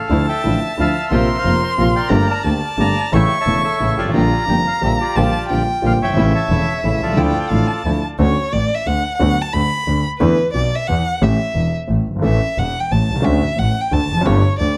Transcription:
Already playing: A4 F5
0.09 D2 D3 F3 A3 D4 E4 A5
0.29 E5 G5
0.44 A1 A2 D3 F3 A3 D4 E4
0.78 D2 D3 F3 A3 D4 E4 E5 F5 A5
1.10 A#1 A#2 C3 F3 A#3 C4 F4 A#4 C5 E5 C6
1.38 A#4 C5 F5
1.43 F1 F2 C3 F3 A#3 C4 F4
1.63 C5
1.77 A#1 A#2 C3 F3 A#3 C4 F4 F5
1.96 A#4 D5 G5
2.09 G1 G2 D3 A3 A#3 G4 A#5
2.30 D5 A5
2.43 D2 D3 A3 A#3 G4 A5
2.78 G1 G2 D3 A3 A#3 G4 D5 A#5
3.12 A1 A2 C#3 E3 A3 C#4 E4 C#5 E5 G5 C#6
3.40 C#5 E5 A5
3.46 E1 E2 C#3 E3 A3 C#4 E4
3.64 A4 C#5 E5
3.79 A1 A2 C#3 E3 A3 C#4 E4
3.97 G1 G#1 F4 G4 D5
4.05 G#1
4.09 A1
4.13 A#1 A#2 D3 G3 A#3 D4 F4 G4 A#5
4.46 F1 F2 D3 G3 A#3 D4 F4 G4 G5
4.67 F5
4.81 A#1 A#2 D3 G3 A#3 D4 F4 G4
4.86 E5
5.01 F4 G4 D5
5.16 A#1 A#2 D3 G3 A#3 F4 G4 A5
5.49 A#1 A#2 D3 G3 A#3 F4 G4 G5
5.82 A#1 A#2 D3 G3 A#3 F4 G4
5.86 F5
5.99 F#1 G1 C#5 E5
6.04 G5
6.09 G1
6.13 G#1 A1 A2 C#3 E3 A3 E4 E5
6.17 A3 C#4 E4
6.35 C#5 E5 A5
6.49 E1 E2 C#3 E3 A3 C#4 E4
6.79 E5
6.84 A1 A2 C#3 E3 A3 C#4 E4
7.01 C2 F4 A4 D5
7.06 B1 C2
7.14 C#2 D2 D3 F3 A3 D4 E4 G5
7.50 A1 A2 D3 F3 A3 D4 E4 F5
7.67 A5
7.85 D2 D3 F3 A3 D4 E4
8.19 D2 D3 A3 C#4 F#4 C#5
8.52 A1 A2 D5
8.75 E5
8.86 D2 D3 F#5
9.17 D2 D3 F#3 B3 F#4 F#5
9.41 A5
9.53 D2 D3 B5
9.87 D2 D3
10.19 E2 D3 E3 A3 B3 E4 B4
10.53 B1 B2 D5
10.75 E5
10.87 E2 E3 F#5
11.22 A1 A2 E3 A3 C#4 G4 E5
11.54 E1 E2
11.88 A1 A2
12.07 F#1 G1
12.16 G1 G#1
12.22 A1 A2 E3 A3 C#4 A4 E5
12.58 E1 E2 F#5
12.80 G5
12.91 A1 A2 A5
13.09 B1 C2
13.15 C2
13.20 C#2 D2 D3 A3 C#4 F#4
13.25 D2 E5
13.56 A1 A2 F#5
13.81 G5
13.91 D2 D3 A5
14.09 F1 E2
14.17 F2
14.21 F#2
14.25 G1 G2 D3 A3 B3 G4 C#5
14.59 D2 D3 D5

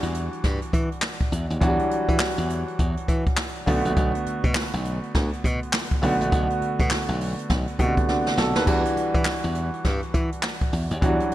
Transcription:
Already playing: E3 G3 D4 F#4
0.03 E2, closed hi-hat
0.14 closed hi-hat
0.33 closed hi-hat
0.44 G2, kick, snare, closed hi-hat
0.62 closed hi-hat
0.73 E3, kick, closed hi-hat
0.92 closed hi-hat
1.02 snare, clap
1.20 kick, closed hi-hat
1.32 E2, closed hi-hat
1.50 D#2, closed hi-hat
1.60 E2 E3 F#3 D4 F#4, kick, closed hi-hat
1.68 G3
1.79 closed hi-hat
1.91 muted slap bass stroke, closed hi-hat
2.09 E3, kick, closed hi-hat
2.19 muted slap bass stroke, snare, clap
2.38 E2, closed hi-hat
2.50 closed hi-hat
2.68 closed hi-hat
2.79 E2, kick, closed hi-hat
2.97 closed hi-hat
3.08 E3, kick, closed hi-hat
3.26 kick, closed hi-hat
3.37 snare, clap
3.56 closed hi-hat
3.66 B1 D3 A3 B3 F#4, kick, open hi-hat
3.85 A#1, closed hi-hat
3.97 B1, kick, closed hi-hat
4.15 closed hi-hat
4.26 muted slap bass stroke, closed hi-hat
4.44 B2, kick, closed hi-hat
4.55 muted slap bass stroke, snare, clap
4.73 B1, closed hi-hat
4.85 closed hi-hat
5.03 closed hi-hat
5.15 D2, kick, snare, closed hi-hat
5.33 closed hi-hat
5.44 B2, kick, closed hi-hat
5.63 closed hi-hat
5.73 snare, clap
5.91 kick, closed hi-hat
6.02 B1 D3 A3 B3 F#4, open hi-hat
6.21 A#1, closed hi-hat
6.32 B1, kick, closed hi-hat
6.50 closed hi-hat
6.61 muted slap bass stroke, closed hi-hat
6.79 B2, kick, closed hi-hat
6.90 muted slap bass stroke, snare, clap
7.09 B1, closed hi-hat
7.21 open hi-hat
7.39 closed hi-hat
7.50 B1, kick, snare, closed hi-hat
7.67 closed hi-hat
7.79 B2 C3 A3 B3 F#4, kick, closed hi-hat
7.85 D3
7.97 kick, closed hi-hat
8.09 D4 F#4, snare
8.27 snare
8.37 B1 F#4 A4, snare
8.55 D#2 B4, snare
8.66 E2 E3 G3 D4 F#4, kick, crash
8.85 closed hi-hat
8.96 muted slap bass stroke, closed hi-hat
9.14 E3, kick, closed hi-hat
9.25 muted slap bass stroke, snare, clap
9.44 E2, closed hi-hat
9.55 closed hi-hat
9.74 closed hi-hat
9.84 G2, kick, snare, closed hi-hat
10.03 closed hi-hat
10.14 E3, kick, closed hi-hat
10.32 closed hi-hat
10.43 snare, clap
10.61 kick, closed hi-hat
10.73 E2, open hi-hat
10.91 D#2, closed hi-hat
11.01 E2 E3 F#3 D4 F#4, kick, closed hi-hat
11.09 G3
11.20 closed hi-hat

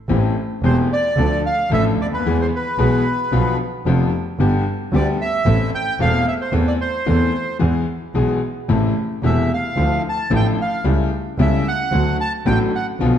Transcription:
0.09 A1 A2 E3 A3 C4 G4
0.62 E1 E2 E3 A3 C4 G4 C5
0.93 D5
1.16 D2 D3 F3 A3 D4 A4
1.46 F5
1.70 A1 A2 F3 A3 D4 A4 E5
1.97 D2
2.02 C#2 D5
2.12 D2 B4
2.19 D#2
2.24 E2 E3 G#3 B3 G#4
2.41 C5
2.56 B4
2.78 B1 B2 E3 G#3 B3 G#4
3.32 B1 B2 D3 F3 B3 F4
3.86 F1 F2 D3 F3 B3 F4
4.39 G1 G2 D3 G3 B3 G4
4.92 D2 D3 G3 B3 G4 D5
5.21 E5
5.45 A1 A2 E3 A3 C4 A4
5.75 G5
5.99 E1 E2 E3 A3 C4 A4 F5
6.28 E5
6.41 C5
6.52 E2 E3 A3 C4 A4
6.67 D5
6.81 C5
7.06 E2 E3 A3 C4 A4
7.59 E2 E3 G#3 B3 G#4
8.14 B1 B2 E3 G#3 B3 G#4
8.69 A1 A2 C3 E3 A3 E4
9.22 E1 E2 C3 E3 A3 E4 E5
9.54 F5
9.76 D2 D3 F3 A3 E4
10.09 A5
10.30 A1 A2 D3 F3 A3 E4
10.36 G5
10.61 F5
10.84 C#2 C#3 G3 A3 E4
11.38 C#2 C#3 G3 A3 E4 E5
11.68 F#5
11.91 D2 D3 F#3 A3 F#4
12.21 A5
12.46 A1 A2 D3 F#3 A3 F#4 G5
12.75 F#5
13.00 B1 B2 D3 F3 B3 F4

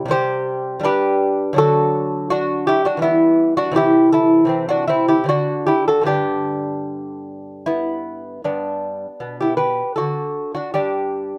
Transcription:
0.06 C3 G3 C4
0.11 G4 C5
0.80 G2 G3 D4
0.84 G4 B4
1.53 D3 F#3 D4
1.58 F#4 A4
2.30 D4 F#4
2.67 E4 G4
2.85 D4 F#4
2.97 E3 G3
3.02 B3 E4
3.57 D4 F#4
3.72 C3 E3 C4
3.76 E4 G4
4.12 E4 A4
4.45 C3 E3 C4
4.69 D4 F#4
4.88 C4 E4
5.08 E4 G4
5.24 D3 C4
5.29 D4 F#4
5.67 E4 G4
5.88 F#4 A4
6.01 G2 D3 B3
6.06 D4 G4
7.66 B3 E4
8.44 G2 B3 D4
9.20 B2
9.41 E4 G4
9.57 G4 B4
9.96 D3 F#4 A4
10.55 D4 F#4
10.74 G2 D4 G4

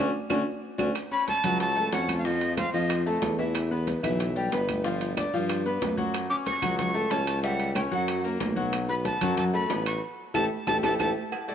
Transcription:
0.30 D2 C#4 D4 F#4, low bongo, high conga, high timbale, claves, maracas
0.78 D2 C#4 D4 F#4, low bongo, high conga, high timbale, claves, maracas
0.95 high bongo, high timbale, claves, maracas
1.11 C#4 C#5 B5 C#6, high conga
1.28 A5, high bongo, high conga, high timbale, low timbale, maracas
1.44 C#2 F#3 F#4 F#5, high bongo, high conga, low conga, high timbale, claves, maracas
1.60 A5, high bongo, high conga, high timbale, maracas
1.76 A3 A4 A5, high bongo, high conga
1.92 F2 C#4 C#5 F#5 C#6, high bongo, low bongo, high conga, high timbale, low timbale, maracas
2.09 high bongo, high conga, high timbale, claves, maracas
2.18 F5
2.25 F3 F4 D#5 F5, high bongo, maracas
2.41 high bongo, high conga, high timbale
2.57 C4 C5 F5 C6, high bongo, high conga, high timbale, low timbale, claves, maracas
2.73 F2 F3 F4 D#5 F5, high bongo, high conga, maracas
2.90 high bongo, high conga, high timbale, claves, maracas
3.06 A3 A4 A5, high conga
3.22 E2, high bongo, low bongo, high conga, high timbale, low timbale, maracas
3.38 E3 E4 E5, high bongo, maracas
3.55 high bongo, high conga, high timbale, claves, maracas
3.71 B3 B4 B5, high conga
3.87 high bongo, high conga, high timbale, low timbale, maracas
4.03 B1 E3 E4 E5, high bongo, high conga, low conga, high timbale, claves, maracas
4.20 high bongo, high conga, high timbale, maracas
4.36 G3 G4 G5, high bongo, high conga
4.52 G1 B3 B4 B5, high bongo, low bongo, high conga, high timbale, low timbale, maracas
4.68 high bongo, high conga, high timbale, claves, maracas
4.84 F3 F4 F5, high bongo, maracas
5.01 high bongo, high conga, high timbale, maracas
5.17 D4 D5 D6, high bongo, high conga, high timbale, low timbale, claves, maracas
5.33 G2 F3 F4 F5, high bongo, high conga, maracas
5.49 high bongo, high conga, high timbale, claves, maracas
5.66 B3 B4 B5, high conga, maracas
5.82 F#2, high bongo, low bongo, high conga, high timbale, low timbale, maracas
5.97 F#3 F#4 F#5, high bongo, high conga, maracas
6.14 high bongo, high timbale, claves, maracas
6.30 C#4 C#5 C#6 D6, high conga
6.46 C#6, high bongo, high conga, high timbale, low timbale, maracas
6.62 C#2 F#3 F#4 F#5, high bongo, high conga, low conga, high timbale, claves, maracas
6.78 C#6, high bongo, high conga, low conga, high timbale, maracas
6.94 A3 A4 A5, high bongo, high conga
7.11 C#2 C#4 C#5 A5 C#6, high bongo, low bongo, high conga, high timbale, low timbale, maracas
7.27 high bongo, high timbale, claves, maracas
7.43 G3 G4 E5 F#5, high bongo, high conga, maracas
7.59 high bongo, high conga, high timbale
7.75 C#4 C#5 G5 C#6, high bongo, high conga, high timbale, low timbale, claves, maracas
7.91 F#2 F#3 F#4 F#5, high bongo, high conga, maracas
8.08 high bongo, high conga, high timbale, claves, maracas
8.24 A#3 A#4 A#5, high conga, maracas
8.40 B1, high bongo, low bongo, high conga, high timbale, low timbale, maracas
8.56 F#3 F#4 F#5, high bongo, high conga, maracas
8.73 high bongo, high conga, high timbale, claves, maracas
8.89 B3 B4 B5, high conga, maracas
9.05 A5, high bongo, high conga, high timbale, low timbale, maracas
9.21 F#2 F#3 F#4 F#5, high bongo, high conga, low conga, high timbale, claves, maracas
9.37 A5, high bongo, high conga, low conga, high timbale, maracas
9.54 A3 A4 A5 B5, high bongo, maracas
9.70 A1 B3 B4 B5, high bongo, low bongo, high conga, high timbale, low timbale, maracas
9.86 C#6, high bongo, high timbale, claves, maracas
10.34 A1 E4 G4 A4 A5, low bongo, high conga, high timbale, claves, maracas
10.67 A1 E4 G4 A4 A5, low bongo, high conga, high timbale, claves, maracas
10.83 A1 E4 G4 A4 A5, low bongo, high conga, high timbale, claves, maracas
10.99 A1 E4 G4 A4 A5, low bongo, high conga, high timbale, claves, maracas
11.32 cowbell, high conga, low agogo, claves, maracas
11.48 A3 A4 D5, high conga, low agogo, maracas

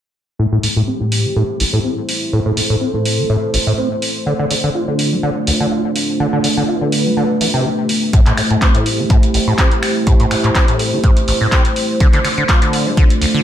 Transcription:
0.39 A2 A3 E4 G4 C5
0.52 A2
0.63 A2, open hi-hat
0.76 A2
0.88 C4
1.00 A2
1.12 open hi-hat
1.25 E3
1.36 A2
1.60 A1, open hi-hat
1.73 A2
1.84 C4
2.09 open hi-hat
2.33 A2 A4
2.46 A2
2.57 A2, open hi-hat
2.70 A2
2.81 C4
2.94 A2
3.05 open hi-hat
3.18 E3
3.29 A2
3.54 A1, open hi-hat
3.67 A2
3.78 C4
4.02 open hi-hat
4.26 D3 D4 F4
4.39 D3
4.51 D3, open hi-hat
4.64 D3
4.75 F4
4.88 D3
4.99 open hi-hat
5.12 A3
5.23 D3
5.47 D2, open hi-hat
5.60 D3
5.72 F4
5.96 open hi-hat
6.20 D3 B4
6.33 D3
6.44 D3, open hi-hat
6.57 D3
6.68 F4
6.81 D3
6.92 open hi-hat
7.06 A3
7.17 D3
7.41 E3, open hi-hat
7.54 C3
7.65 F3
7.89 open hi-hat
8.13 A2 E4 G4 C5, kick, closed hi-hat
8.26 A2, clap, closed hi-hat
8.37 A2, finger snap, open hi-hat
8.50 A2, closed hi-hat
8.62 C4, kick, clap, closed hi-hat
8.75 A2, closed hi-hat
8.86 open hi-hat
8.99 E3
9.10 A2, kick, closed hi-hat
9.23 closed hi-hat
9.34 A1, open hi-hat
9.47 A2
9.58 C4, kick, clap, closed hi-hat
9.71 closed hi-hat
9.83 finger snap, open hi-hat
10.07 A2, kick, closed hi-hat
10.20 A2, closed hi-hat
10.31 A2, finger snap, open hi-hat
10.44 A2, clap, closed hi-hat
10.55 C4, kick, clap, closed hi-hat
10.68 A2, closed hi-hat
10.79 open hi-hat
10.93 E3
11.04 A2, kick, closed hi-hat
11.17 closed hi-hat
11.28 A1, open hi-hat
11.41 A2
11.52 C4, kick, clap, closed hi-hat
11.65 closed hi-hat
11.76 open hi-hat
12.00 D3 A3 D4 F4, kick, closed hi-hat
12.13 D3, clap, closed hi-hat
12.25 D3, finger snap, open hi-hat
12.38 D3, closed hi-hat
12.49 F4, kick, clap, closed hi-hat
12.62 D3, closed hi-hat
12.73 open hi-hat
12.86 A3
12.97 D3, kick, closed hi-hat
13.10 closed hi-hat
13.21 D2, open hi-hat
13.34 D3

